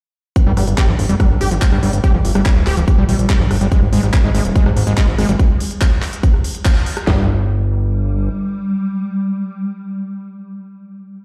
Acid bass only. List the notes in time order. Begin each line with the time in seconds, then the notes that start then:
0.46 G3
0.57 G3
0.78 G4
0.88 F3
1.09 G3
1.20 G3
1.41 G4
1.51 F3
1.72 G3
1.83 G3
2.04 G4
2.14 F3
2.35 G3
2.46 G3
2.67 G4
2.77 F3
2.98 G3
3.09 G3
3.30 G4
3.40 F3
3.61 G3
3.72 G#3
3.93 G#3
4.03 G3
4.24 G#3
4.35 G#3
4.56 G#3
4.66 G3
4.87 G#3
4.98 G#3
5.18 G#3
5.29 G3
7.07 G3